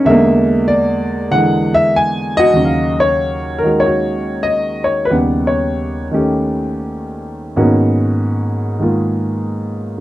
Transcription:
Already playing: C#4
0.05 E2 D3 G#3 E5
0.10 A#3
0.68 D5
1.31 D3 E3 G#3 F#5
1.74 E5
1.96 G#5
2.37 F#4 D#5
2.53 D#2 C#3
2.60 F#3
2.65 F5
3.00 C#5
3.58 A#4
3.63 D#3 G#3 F#4
3.80 C#5
3.86 F#4
4.43 D#5
4.84 C#5
5.05 B4
5.10 D#2 C#3 G3 B3 G4 F#5
5.47 C#5
6.11 D#3 A3 C#4 G4
7.56 G#2 D#3 A#3 B3 C#4 F#4
8.79 D#3 G#3 A#3 F4

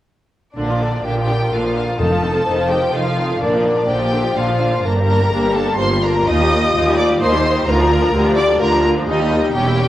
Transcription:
0.56 A#1 A#2 D3 D4 D5
0.69 F3 F4
0.81 D3 D4
0.94 F3 F4
1.04 A#1 A#2 D3 D4 G4 A#4 G5
1.17 F3 F4
1.29 D3 D4
1.41 F3 F4
1.51 A#1 A#2 D3 D4 F4 F5
1.64 F3 F4
1.76 D3 D4
1.87 F3 F4
1.99 F1 F2 D#3 D#4 A4 A5
2.11 F3 F4
2.22 D#3 D#4
2.34 F3 F4
2.46 F1 F2 D#3 D#4 C5
2.58 F3 F4
2.70 D#3 D#4 G4 G5
2.81 F3 F4
2.93 F1 F2 D#3 D#4 F4 A4 F5
3.06 F3 F4
3.18 D#3 D#4
3.30 F3 F4
3.40 A#1 A#2 D3 D4 A#4 D5
3.54 F3 F4
3.65 D3 D4
3.76 F3 F4
3.87 A#1 A#2 D3 D4 G4 C5 G5
4.00 F3 F4
4.12 D3 D4
4.23 F3 F4
4.35 A#1 A#2 D3 D4 F4 F5
4.47 F3 F4
4.60 D3 D4
4.72 F3 F4
4.84 G1 G2 A#3 D4 A#4 A#5
4.97 G3 A#3
5.10 A#3 D4
5.22 G3 A#3
5.32 G1 G2 A#3 D4 G4
5.45 G3 A#3
5.54 A#3 D4 A4 A5
5.67 G3 A#3
5.78 G1 G2 A#3 D4 F4 C5 C6
5.91 G3 A#3
6.03 A#3 D4 A#4 A#5
6.16 G3 A#3
6.27 D#2 A#3 D#4 D#5 D#6
6.40 G3 G4
6.52 A#3 D#4
6.63 G3 G4
6.75 D#2 A#3 D#4
6.86 G3 G4
6.97 A#3 D#4 D5 D6
7.09 G3 G4
7.20 D#2 A#3 D#4 C5 C6
7.33 G3 G4
7.44 A#3 D#4
7.56 G3 G4
7.66 D2 D3 F4 A#4 A#5
7.79 F3 D4
7.91 D3 F4
8.01 F3 D4
8.13 D2 D3 F4 G4
8.25 F3 D4
8.36 D3 F4 D5 D6
8.49 F3 D4
8.60 D2 D3 F4 A#4 A#5
8.72 F3 D4
8.83 D3 F4
8.96 F3 D4
9.07 D#2 A#3 D#4 G4 D#5
9.20 G3 G4
9.31 A#3 D#4
9.44 G3 G4
9.54 E1 E2 G3 C#4 G4 G5
9.67 A#3 E4
9.79 G3 C#4

